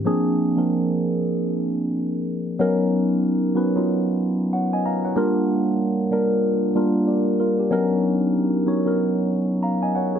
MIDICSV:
0, 0, Header, 1, 2, 480
1, 0, Start_track
1, 0, Tempo, 638298
1, 32, Time_signature, 4, 2, 24, 8
1, 7666, End_track
2, 0, Start_track
2, 0, Title_t, "Tine electric piano"
2, 0, Program_c, 0, 4
2, 0, Control_c, 0, 64, 127
2, 36, Note_on_c, 0, 53, 95
2, 42, Control_c, 0, 64, 0
2, 42, Note_on_c, 0, 58, 88
2, 45, Note_on_c, 0, 60, 90
2, 48, Note_on_c, 0, 62, 90
2, 51, Note_on_c, 0, 68, 117
2, 166, Control_c, 0, 64, 127
2, 370, Note_off_c, 0, 53, 0
2, 372, Note_off_c, 0, 58, 0
2, 374, Note_off_c, 0, 60, 0
2, 376, Note_off_c, 0, 62, 0
2, 377, Note_off_c, 0, 68, 0
2, 426, Note_on_c, 0, 53, 73
2, 427, Note_on_c, 0, 58, 69
2, 433, Note_on_c, 0, 60, 64
2, 435, Note_on_c, 0, 62, 58
2, 439, Note_on_c, 0, 70, 76
2, 1242, Note_off_c, 0, 53, 0
2, 1243, Note_off_c, 0, 58, 0
2, 1246, Note_off_c, 0, 60, 0
2, 1247, Note_off_c, 0, 62, 0
2, 1249, Note_off_c, 0, 70, 0
2, 1950, Note_on_c, 0, 54, 120
2, 1951, Note_on_c, 0, 59, 106
2, 1957, Note_on_c, 0, 61, 105
2, 1961, Control_c, 0, 64, 0
2, 1961, Note_on_c, 0, 63, 103
2, 1963, Note_on_c, 0, 70, 125
2, 2075, Control_c, 0, 64, 127
2, 2606, Note_off_c, 0, 54, 0
2, 2606, Note_off_c, 0, 59, 0
2, 2610, Note_off_c, 0, 61, 0
2, 2611, Note_off_c, 0, 63, 0
2, 2612, Note_off_c, 0, 70, 0
2, 2669, Note_on_c, 0, 54, 76
2, 2673, Note_on_c, 0, 59, 74
2, 2679, Note_on_c, 0, 61, 72
2, 2681, Note_on_c, 0, 63, 67
2, 2683, Note_on_c, 0, 71, 87
2, 2802, Note_off_c, 0, 54, 0
2, 2804, Note_off_c, 0, 59, 0
2, 2807, Note_off_c, 0, 61, 0
2, 2808, Note_off_c, 0, 63, 0
2, 2809, Note_off_c, 0, 71, 0
2, 2820, Note_on_c, 0, 54, 77
2, 2826, Note_on_c, 0, 59, 70
2, 2831, Note_on_c, 0, 61, 69
2, 2832, Note_on_c, 0, 63, 70
2, 2836, Note_on_c, 0, 65, 86
2, 3407, Note_on_c, 0, 78, 63
2, 3413, Note_on_c, 0, 73, 54
2, 3541, Note_off_c, 0, 78, 0
2, 3544, Note_off_c, 0, 73, 0
2, 3559, Note_on_c, 0, 80, 70
2, 3563, Note_on_c, 0, 75, 61
2, 3637, Note_off_c, 0, 80, 0
2, 3639, Note_off_c, 0, 54, 0
2, 3639, Note_off_c, 0, 75, 0
2, 3642, Note_off_c, 0, 59, 0
2, 3644, Note_off_c, 0, 61, 0
2, 3645, Note_off_c, 0, 63, 0
2, 3647, Note_off_c, 0, 65, 0
2, 3652, Note_on_c, 0, 82, 73
2, 3656, Note_on_c, 0, 77, 62
2, 3784, Note_off_c, 0, 82, 0
2, 3786, Note_off_c, 0, 77, 0
2, 3796, Note_on_c, 0, 78, 69
2, 3802, Note_on_c, 0, 73, 52
2, 3880, Note_on_c, 0, 55, 117
2, 3881, Note_on_c, 0, 58, 104
2, 3883, Control_c, 0, 64, 0
2, 3888, Note_on_c, 0, 62, 104
2, 3891, Note_on_c, 0, 70, 121
2, 3893, Note_on_c, 0, 65, 101
2, 3993, Control_c, 0, 64, 127
2, 4016, Note_off_c, 0, 78, 0
2, 4020, Note_off_c, 0, 73, 0
2, 4531, Note_off_c, 0, 55, 0
2, 4531, Note_off_c, 0, 58, 0
2, 4535, Note_off_c, 0, 62, 0
2, 4537, Note_off_c, 0, 65, 0
2, 4537, Note_off_c, 0, 70, 0
2, 4594, Note_on_c, 0, 55, 74
2, 4600, Note_on_c, 0, 58, 69
2, 4604, Note_on_c, 0, 62, 71
2, 4605, Note_on_c, 0, 65, 67
2, 4610, Note_on_c, 0, 70, 93
2, 5029, Note_off_c, 0, 55, 0
2, 5033, Note_off_c, 0, 58, 0
2, 5035, Note_off_c, 0, 62, 0
2, 5035, Note_off_c, 0, 65, 0
2, 5037, Note_off_c, 0, 70, 0
2, 5078, Note_on_c, 0, 55, 89
2, 5080, Note_on_c, 0, 58, 81
2, 5083, Note_on_c, 0, 62, 71
2, 5086, Note_on_c, 0, 65, 79
2, 5089, Note_on_c, 0, 70, 89
2, 5317, Note_off_c, 0, 62, 0
2, 5319, Note_off_c, 0, 65, 0
2, 5320, Note_off_c, 0, 70, 0
2, 5321, Note_on_c, 0, 74, 60
2, 5326, Note_on_c, 0, 67, 56
2, 5545, Note_off_c, 0, 74, 0
2, 5547, Note_off_c, 0, 67, 0
2, 5564, Note_on_c, 0, 70, 73
2, 5569, Note_on_c, 0, 65, 67
2, 5699, Note_off_c, 0, 70, 0
2, 5702, Note_off_c, 0, 65, 0
2, 5712, Note_on_c, 0, 67, 66
2, 5716, Note_on_c, 0, 62, 55
2, 5730, Note_off_c, 0, 55, 0
2, 5731, Note_off_c, 0, 58, 0
2, 5795, Note_on_c, 0, 54, 124
2, 5799, Note_on_c, 0, 59, 107
2, 5801, Control_c, 0, 64, 0
2, 5802, Note_on_c, 0, 61, 113
2, 5804, Note_on_c, 0, 63, 110
2, 5810, Note_on_c, 0, 70, 127
2, 5935, Note_off_c, 0, 67, 0
2, 5936, Note_off_c, 0, 62, 0
2, 5938, Control_c, 0, 64, 127
2, 6448, Note_off_c, 0, 54, 0
2, 6450, Note_off_c, 0, 59, 0
2, 6452, Note_off_c, 0, 61, 0
2, 6453, Note_off_c, 0, 63, 0
2, 6456, Note_off_c, 0, 70, 0
2, 6515, Note_on_c, 0, 54, 78
2, 6517, Note_on_c, 0, 59, 69
2, 6519, Note_on_c, 0, 61, 76
2, 6523, Note_on_c, 0, 63, 70
2, 6527, Note_on_c, 0, 73, 92
2, 6644, Note_off_c, 0, 54, 0
2, 6645, Note_off_c, 0, 59, 0
2, 6647, Note_off_c, 0, 61, 0
2, 6649, Note_off_c, 0, 63, 0
2, 6651, Note_off_c, 0, 73, 0
2, 6659, Note_on_c, 0, 54, 77
2, 6662, Note_on_c, 0, 59, 76
2, 6666, Note_on_c, 0, 61, 63
2, 6672, Note_on_c, 0, 63, 69
2, 6673, Note_on_c, 0, 70, 84
2, 7238, Note_off_c, 0, 70, 0
2, 7239, Note_on_c, 0, 82, 61
2, 7247, Note_on_c, 0, 77, 60
2, 7377, Note_off_c, 0, 82, 0
2, 7381, Note_off_c, 0, 77, 0
2, 7389, Note_on_c, 0, 80, 71
2, 7396, Note_on_c, 0, 75, 60
2, 7472, Note_off_c, 0, 80, 0
2, 7475, Note_off_c, 0, 75, 0
2, 7479, Note_off_c, 0, 54, 0
2, 7480, Note_off_c, 0, 59, 0
2, 7482, Note_off_c, 0, 61, 0
2, 7485, Note_off_c, 0, 63, 0
2, 7485, Note_on_c, 0, 78, 72
2, 7491, Note_on_c, 0, 73, 68
2, 7620, Note_off_c, 0, 78, 0
2, 7623, Note_off_c, 0, 73, 0
2, 7635, Note_on_c, 0, 73, 62
2, 7638, Note_on_c, 0, 68, 58
2, 7666, Note_off_c, 0, 68, 0
2, 7666, Note_off_c, 0, 73, 0
2, 7666, End_track
0, 0, End_of_file